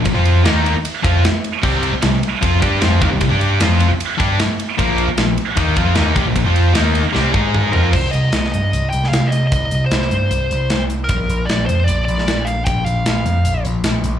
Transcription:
<<
  \new Staff \with { instrumentName = "Lead electric guitar" } { \time 4/4 \key c \minor \tempo 4 = 152 r1 | r1 | r1 | r1 |
r2. r8 bes'8 | c''8 ees''4 ees''4 g''8 f''8 ees''8 | ees''4 c''2~ c''8 r8 | bes'4 d''8 c''8 d''8 d''4 f''8 |
g''8 f''2 r4. | }
  \new Staff \with { instrumentName = "Distorted electric guitar" } { \clef bass \time 4/4 \key c \minor <bes, f>16 <f c' f'>8. <ees bes ees'>8. r8. <f c' f'>8 r4 | <c g c'>8. r16 <c g>8 r8 <f c' f'>8 <g d' g'>8 <f c' f'>8 <ees bes>16 <c g>16 | <c g>16 <g d' g'>8. <f c' f'>8. r8. <g d' g'>8 r4 | <bes, f bes>8. r16 <bes, f>8 r8 <ees bes ees'>8 <f c' f'>8 <ees bes ees'>8 <c g>16 <bes, f>16 |
<bes, f>16 <f c' f'>8. <ees bes ees'>8. r16 <c g c'>8 <aes ees' aes'>4 <f c' f'>8 | r1 | r1 | r1 |
r1 | }
  \new Staff \with { instrumentName = "Distorted electric guitar" } { \clef bass \time 4/4 \key c \minor <bes, f>16 <f c' f'>8. <ees bes ees'>8. r8. <f c' f'>8 r4 | <c g c'>8. r16 <c g>8 r8 <f c' f'>8 <g d' g'>8 <f c' f'>8 <ees bes>16 <c g>16 | <c g>16 <g d' g'>8. <f c' f'>8. r8. <g d' g'>8 r4 | <bes, f bes>8. r16 <bes, f>8 r8 <ees bes ees'>8 <f c' f'>8 <ees bes ees'>8 <c g>16 <bes, f>16 |
<bes, f>16 <f c' f'>8. <ees bes ees'>8. r16 <c g c'>8 <aes ees' aes'>4 <f c' f'>8 | r1 | r1 | r1 |
r1 | }
  \new Staff \with { instrumentName = "Picked electric bass" } { \clef bass \time 4/4 \key c \minor bes,,16 f,8. ees,8. r8. f,8 r4 | c,8. r16 c,8 r8 f,8 g,8 f,8 ees,16 c,16 | c,16 g,8. f,8. r8. g,8 r4 | bes,,8. r16 bes,,8 r8 ees,8 f,8 ees,8 c,16 bes,,16 |
bes,,16 f,8. ees,8. r16 c,8 aes,4 f,8 | c,8 c,8 c,8 g,8 c,8 c,8 c,4 | c,8 c,8 c,8 g,8 c,8 c,8 c,4 | bes,,8 bes,,8 bes,,8 f,8 bes,,8 bes,,8 bes,,4 |
bes,,8 bes,,8 bes,,8 f,8 bes,,8 bes,,8 bes,,8 bes,,8 | }
  \new DrumStaff \with { instrumentName = "Drums" } \drummode { \time 4/4 <bd cymr>8 cymr8 <cymr sn>8 cymr8 cymr8 <bd cymr>8 <cymr sn>8 cymr8 | <cymc bd>8 cymr8 <cymr sn>8 cymr8 <bd cymr>8 <bd cymr>8 <cymr sn>8 <bd cymr>8 | <bd cymr>8 cymr8 <cymr sn>8 cymr8 cymr8 <bd cymr>8 <cymr sn>8 cymr8 | <bd cymr>8 cymr8 <cymr sn>8 cymr8 <bd cymr>8 <bd cymr>8 <cymr sn>8 <bd cymr>8 |
<bd cymr>8 cymr8 <cymr sn>8 cymr8 sn8 bd8 toml8 tomfh8 | <cymc bd>8 hh8 <hh sn>16 sn16 hh8 hh8 hh16 sn16 <hh sn>8 hh8 | <hh bd>8 hh8 <hh sn>16 sn16 hh8 hh8 hh8 <hh sn>8 hh8 | <hh bd>8 hh8 <hh sn>8 hh8 hh8 hh16 sn16 <hh sn>8 hh8 |
<hh bd>8 hh8 <hh sn>8 hh8 hh8 hh8 <hh sn>8 hh8 | }
>>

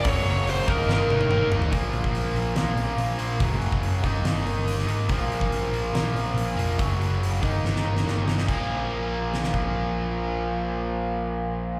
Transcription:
<<
  \new Staff \with { instrumentName = "Lead electric guitar" } { \time 4/4 \key ees \major \tempo 4 = 142 des''4 c''8 bes'8 bes'4. r8 | r1 | r1 | r1 |
r1 | r1 | r1 | }
  \new Staff \with { instrumentName = "Distorted electric guitar" } { \clef bass \time 4/4 \key ees \major <ges, des ges>8 <ges, des ges>8 <ges, des ges>8 <ees bes ees'>8 <ees bes ees'>8 <ees bes ees'>8 <ees bes ees'>8 <ees bes ees'>8 | r1 | r1 | r1 |
r1 | r1 | r1 | }
  \new Staff \with { instrumentName = "Distorted electric guitar" } { \clef bass \time 4/4 \key ees \major <ges, des ges>4. <ees bes ees'>4. <ees bes ees'>4 | <bes, f bes>2.~ <bes, f bes>8 <bes, f bes>8 | <ges, des ges>4. <ees bes ees'>2~ <ees bes ees'>8 | <bes, f bes>2.~ <bes, f bes>8 <bes, f bes>8 |
<ges, des ges>4. <ees bes ees'>2~ <ees bes ees'>8 | <bes, f bes>1~ | <bes, f bes>1 | }
  \new Staff \with { instrumentName = "Overdriven electric guitar" } { \clef bass \time 4/4 \key ees \major <ges, des ges>4. <ees bes ees'>2~ <ees bes ees'>8 | <bes, f bes>2 <bes, f bes>2 | <ges, des ges>4. <ees bes ees'>2 <ees bes ees'>8 | <bes, f bes>2 <bes, f bes>2 |
<ges, des ges>4. <ees bes ees'>2 <ees bes ees'>8 | <bes, f bes>1~ | <bes, f bes>1 | }
  \new Staff \with { instrumentName = "Picked electric bass" } { \clef bass \time 4/4 \key ees \major ges,,8 ges,,8 ges,,8 g,,8 g,,8 g,,8 g,,8 g,,8 | bes,,8 bes,,8 bes,,8 bes,,8 bes,,8 bes,,8 bes,,8 bes,,8 | ges,,8 ges,,8 ges,,8 g,,8 g,,8 g,,8 g,,8 aes,,8 | bes,,8 bes,,8 bes,,8 bes,,8 bes,,8 bes,,8 bes,,8 f,,8 |
ges,,8 ges,,8 ges,,8 g,,8 g,,8 g,,8 g,,8 g,,8 | bes,,1~ | bes,,1 | }
  \new DrumStaff \with { instrumentName = "Drums" } \drummode { \time 4/4 <hho bd>4 hho8 bd8 sn8 tommh16 tommh16 toml8 tomfh16 tomfh16 | <hho bd>8 hho16 bd16 hho8 hho8 <hho sn>8 hho8 hho8 hho8 | <hho bd>8 hho16 bd16 hho8 <hho bd>8 <hho sn>8 hho8 hho16 sn16 hho8 | <hho bd>8 hho16 bd16 hho8 hho8 <hho sn>8 hho8 hho8 hho8 |
<hho bd>8 hho8 hho8 <hho bd>8 sn16 sn8 sn16 sn8 sn16 sn16 | <cymc bd>4 r4 sn16 sn16 bd8 r4 | r4 r4 r4 r4 | }
>>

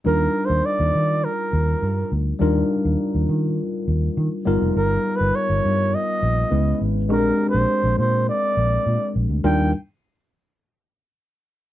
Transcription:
<<
  \new Staff \with { instrumentName = "Flugelhorn" } { \time 4/4 \key ees \major \tempo 4 = 102 \tuplet 3/2 { bes'4 c''8 } d''4 bes'4. r8 | r1 | \tuplet 3/2 { ais'4 b'8 } des''4 dis''4. r8 | \tuplet 3/2 { bes'4 c''8~ } c''8 c''8 d''4. r8 |
g''8 r2. r8 | }
  \new Staff \with { instrumentName = "Tine electric piano" } { \time 4/4 \key ees \major <g d' ees' f' bes'>1 | <g d' ees' f' bes'>2.~ <g d' ees' f' bes'>8 <g b dis' f' ais'>8~ | <g b dis' f' ais'>2. <aes ces' des' fes' ces''>4 | <aes c' d' g' a' bes'>1 |
<g d' ees' f' bes'>8 r2. r8 | }
  \new Staff \with { instrumentName = "Fingered electric bass" } { \clef bass \time 4/4 \key ees \major ees,8 r16 ees,16 r16 ees,16 ees8. r16 ees,8 g,8 d,8 | ees,8 r16 ees,16 r16 ees,16 ees8. r16 ees,8 ees16 r16 g,,16 f,,16 | g,,8 r16 g,,16 r16 g,,16 g,8. r16 ais,,8 des,8 aes,,8 | bes,,8 r16 bes,,16 r16 bes,,16 bes,8. r16 bes,,8 bes,16 r16 bes,,16 d,16 |
ees,8 r2. r8 | }
>>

